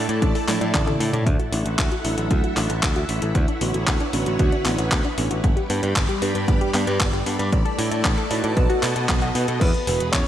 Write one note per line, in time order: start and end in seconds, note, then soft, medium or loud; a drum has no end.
0.00 0.45 A3 medium
0.00 1.24 A3 medium
0.00 0.45 D4 medium
0.00 0.45 E4 medium
0.00 1.24 E4 medium
0.00 0.45 A4 medium
0.00 0.45 D5 loud
0.00 1.22 D5 medium
0.00 1.24 A5 medium
0.09 0.19 A2 medium
0.09 0.18 D5 medium
0.09 closed hi-hat medium
0.22 0.32 A1 medium
0.22 0.31 D4 medium
0.22 kick loud
0.22 closed hi-hat medium
0.35 0.44 A4 loud
0.35 open hi-hat medium
0.48 0.58 A2 medium
0.48 0.58 A3 medium
0.48 0.61 D4 medium
0.48 0.58 D4 medium
0.48 0.58 E4 medium
0.48 0.58 A4 medium
0.48 0.58 E5 loud
0.48 clap medium
0.48 open hi-hat loud
0.48 high tom medium
0.61 0.71 A2 medium
0.61 0.97 A3 medium
0.61 0.97 D4 medium
0.61 0.97 E4 medium
0.61 0.97 A4 medium
0.61 0.70 D5 medium
0.61 0.97 D5 medium
0.61 closed hi-hat medium
0.61 high tom medium
0.74 0.95 A1 medium
0.74 0.83 D4 medium
0.74 kick loud
0.74 clap loud
0.74 closed hi-hat medium
0.74 mid tom medium
0.87 0.96 A4 loud
0.87 closed hi-hat soft
0.87 mid tom medium
1.00 1.11 A2 medium
1.00 1.14 D3 medium
1.00 1.13 D4 medium
1.00 1.14 D4 medium
1.00 1.14 E4 medium
1.00 1.14 A4 medium
1.00 1.14 D5 loud
1.00 open hi-hat loud
1.13 1.24 A2 medium
1.13 1.22 D5 medium
1.13 closed hi-hat medium
1.13 mid tom medium
1.26 1.37 D2 medium
1.26 1.35 D4 medium
1.26 5.40 E4 medium
1.26 3.33 A4 medium
1.26 3.33 E5 medium
1.26 3.33 F#5 medium
1.26 kick loud
1.26 closed hi-hat medium
1.39 1.48 F#4 loud
1.39 closed hi-hat soft
1.52 1.63 A1 medium
1.52 1.66 F#3 medium
1.52 1.66 A3 medium
1.52 1.65 D4 medium
1.52 1.66 D4 medium
1.52 1.66 E4 medium
1.52 open hi-hat loud
1.65 1.76 A1 medium
1.65 1.74 A4 medium
1.65 closed hi-hat medium
1.79 1.89 D2 medium
1.79 1.87 D4 medium
1.79 kick loud
1.79 clap loud
1.79 closed hi-hat medium
1.92 2.00 F#4 loud
1.92 closed hi-hat soft
2.05 2.15 A1 medium
2.05 2.54 F#3 medium
2.05 2.54 A3 medium
2.05 2.17 D4 medium
2.05 2.54 D4 medium
2.05 2.54 E4 loud
2.05 open hi-hat loud
2.18 2.28 A1 medium
2.18 2.26 A4 medium
2.18 closed hi-hat medium
2.31 2.41 D2 medium
2.31 2.39 D4 medium
2.31 kick loud
2.31 closed hi-hat medium
2.44 2.52 F#4 loud
2.44 closed hi-hat soft
2.57 2.67 A1 medium
2.57 2.70 F#3 medium
2.57 2.70 A3 medium
2.57 2.70 D4 medium
2.57 2.69 D4 medium
2.57 2.70 E4 medium
2.57 clap medium
2.57 open hi-hat loud
2.70 2.80 A1 medium
2.70 2.79 A4 medium
2.70 closed hi-hat medium
2.83 3.03 D2 loud
2.83 2.92 D4 medium
2.83 kick loud
2.83 clap loud
2.83 open hi-hat medium
2.96 3.05 F#4 medium
2.96 closed hi-hat soft
3.09 3.19 A1 medium
3.09 3.22 F#3 medium
3.09 3.22 A3 medium
3.09 3.21 D4 medium
3.09 3.22 D4 medium
3.09 3.22 E4 medium
3.09 open hi-hat loud
3.22 3.32 A1 medium
3.22 3.31 A4 medium
3.22 closed hi-hat soft
3.35 3.45 D2 loud
3.35 3.44 B3 medium
3.35 5.42 B4 medium
3.35 5.42 C#5 medium
3.35 5.41 F#5 medium
3.35 kick loud
3.35 closed hi-hat medium
3.48 3.57 D4 loud
3.48 closed hi-hat soft
3.61 3.71 A1 medium
3.61 3.74 D3 medium
3.61 3.74 B3 medium
3.61 3.74 C#4 medium
3.61 3.74 D4 medium
3.61 3.74 F#4 medium
3.61 open hi-hat loud
3.74 3.85 A1 medium
3.74 3.83 F#4 medium
3.74 closed hi-hat medium
3.87 3.97 D2 medium
3.87 3.96 B3 medium
3.87 kick loud
3.87 clap loud
3.87 closed hi-hat medium
4.00 4.09 D4 loud
4.00 closed hi-hat soft
4.13 4.24 A1 medium
4.13 4.62 D3 medium
4.13 4.62 B3 medium
4.13 4.26 B3 medium
4.13 4.62 C#4 medium
4.13 4.62 D4 medium
4.13 4.62 F#4 loud
4.13 open hi-hat loud
4.26 4.37 A1 medium
4.26 4.35 F#4 medium
4.26 closed hi-hat medium
4.39 4.50 D2 medium
4.39 4.48 B3 medium
4.39 kick loud
4.39 closed hi-hat soft
4.52 4.61 D4 loud
4.52 closed hi-hat soft
4.65 4.76 A1 medium
4.65 4.79 D3 medium
4.65 4.78 B3 medium
4.65 4.79 B3 medium
4.65 4.79 C#4 medium
4.65 4.79 D4 medium
4.65 4.79 F#4 medium
4.65 clap medium
4.65 open hi-hat loud
4.78 4.89 A1 medium
4.78 4.87 F#4 medium
4.78 closed hi-hat medium
4.92 5.02 D2 medium
4.92 5.00 B3 medium
4.92 kick loud
4.92 clap loud
4.92 closed hi-hat medium
5.05 5.13 D4 loud
5.05 closed hi-hat soft
5.18 5.28 A1 medium
5.18 5.31 G2 medium
5.18 5.30 B3 medium
5.18 5.31 B3 medium
5.18 5.31 C#4 medium
5.18 5.31 D4 medium
5.18 5.31 E4 medium
5.18 open hi-hat loud
5.31 5.41 A1 medium
5.31 5.39 F#4 medium
5.31 closed hi-hat medium
5.44 5.54 G1 medium
5.44 7.51 G3 medium
5.44 5.52 B3 medium
5.44 7.50 G4 medium
5.44 8.54 D5 medium
5.44 7.50 B5 medium
5.44 kick loud
5.44 closed hi-hat soft
5.57 5.65 G4 loud
5.57 closed hi-hat soft
5.70 5.83 G2 medium
5.70 5.80 G2 loud
5.70 5.82 B3 medium
5.70 5.83 B3 medium
5.70 5.83 D4 medium
5.70 5.83 G4 medium
5.70 5.83 B4 medium
5.70 open hi-hat loud
5.83 5.93 G2 medium
5.83 5.91 B4 medium
5.83 closed hi-hat soft
5.96 6.06 G1 medium
5.96 6.05 B3 medium
5.96 kick loud
5.96 clap loud
5.96 closed hi-hat medium
6.09 6.18 G4 loud
6.09 closed hi-hat soft
6.22 6.32 G2 medium
6.22 6.71 G2 medium
6.22 6.34 B3 medium
6.22 6.71 B3 medium
6.22 6.71 D4 medium
6.22 6.71 G4 medium
6.22 6.71 B4 loud
6.22 open hi-hat medium
6.35 6.45 G2 medium
6.35 6.44 B4 medium
6.35 closed hi-hat soft
6.48 6.58 G1 medium
6.48 6.57 B3 medium
6.48 kick loud
6.48 closed hi-hat medium
6.61 6.70 G4 loud
6.61 closed hi-hat soft
6.74 6.84 G2 medium
6.74 6.88 G2 medium
6.74 6.87 B3 medium
6.74 6.88 B3 medium
6.74 6.88 D4 medium
6.74 6.88 G4 medium
6.74 6.88 B4 medium
6.74 clap medium
6.74 open hi-hat loud
6.87 6.97 G2 loud
6.87 6.96 B4 medium
6.87 closed hi-hat medium
7.00 7.21 G1 loud
7.00 7.09 B3 medium
7.00 kick loud
7.00 clap loud
7.00 open hi-hat medium
7.13 7.22 G4 loud
7.13 closed hi-hat soft
7.26 7.37 G2 medium
7.26 7.39 B3 medium
7.26 7.40 B3 medium
7.26 7.40 D4 medium
7.26 7.40 G4 medium
7.26 7.40 A4 medium
7.26 open hi-hat loud
7.39 7.50 G2 loud
7.39 7.48 B4 medium
7.39 closed hi-hat soft
7.52 7.63 A1 medium
7.52 8.56 A3 medium
7.52 7.61 D4 medium
7.52 8.56 E4 medium
7.52 9.59 A5 medium
7.52 kick loud
7.52 closed hi-hat soft
7.65 7.74 A4 loud
7.65 closed hi-hat soft
7.78 7.89 A2 medium
7.78 7.92 A3 medium
7.78 7.91 D4 medium
7.78 7.92 D4 medium
7.78 7.92 E4 medium
7.78 7.92 A4 medium
7.78 7.92 D5 medium
7.78 open hi-hat loud
7.91 8.02 A2 medium
7.91 8.00 D5 medium
7.91 closed hi-hat medium
8.05 8.15 A1 medium
8.05 8.13 D4 medium
8.05 kick loud
8.05 clap loud
8.05 closed hi-hat medium
8.18 8.26 A4 loud
8.18 closed hi-hat soft
8.31 8.41 A2 medium
8.31 8.80 B2 medium
8.31 8.43 D4 medium
8.31 8.80 D#4 medium
8.31 8.80 F#4 medium
8.31 8.80 A4 medium
8.31 8.80 B4 loud
8.31 open hi-hat loud
8.44 8.54 A2 medium
8.44 8.52 D5 medium
8.44 closed hi-hat soft
8.57 8.67 B1 medium
8.57 9.60 B3 medium
8.57 8.65 B3 medium
8.57 9.60 F#4 medium
8.57 9.60 D#5 medium
8.57 kick loud
8.57 closed hi-hat soft
8.70 8.78 F#4 loud
8.70 closed hi-hat soft
8.83 8.96 B2 medium
8.83 8.93 B2 medium
8.83 8.95 B3 medium
8.83 8.96 D#4 medium
8.83 8.96 F#4 medium
8.83 8.96 A4 medium
8.83 8.96 B4 medium
8.83 clap medium
8.83 open hi-hat loud
8.96 9.06 B2 medium
8.96 9.05 A4 medium
8.96 closed hi-hat soft
9.09 9.29 B1 medium
9.09 9.18 B3 medium
9.09 kick loud
9.09 clap loud
9.09 closed hi-hat medium
9.22 9.31 F#4 loud
9.22 closed hi-hat soft
9.35 9.45 B2 loud
9.35 9.47 B3 medium
9.35 9.48 D#4 medium
9.35 9.48 F#4 medium
9.35 9.48 A4 medium
9.35 9.48 B4 medium
9.35 open hi-hat loud
9.48 9.58 B2 medium
9.48 9.57 A4 medium
9.48 closed hi-hat medium
9.60 9.71 E2 loud
9.60 10.10 B3 medium
9.60 10.28 G#4 medium
9.60 10.14 B4 loud
9.60 10.28 F#5 medium
9.60 10.28 B5 medium
9.60 kick loud
9.60 closed hi-hat medium
9.60 crash loud
9.74 closed hi-hat soft
9.87 9.97 E1 loud
9.87 10.01 E3 medium
9.87 10.01 E4 medium
9.87 10.01 F#4 medium
9.87 10.01 G#4 medium
9.87 10.01 B4 medium
9.87 open hi-hat loud
10.00 10.11 E1 medium
10.00 closed hi-hat medium
10.12 10.24 E2 medium
10.12 10.28 C#4 medium
10.12 10.28 C#5 loud
10.12 kick loud
10.12 clap loud
10.12 closed hi-hat medium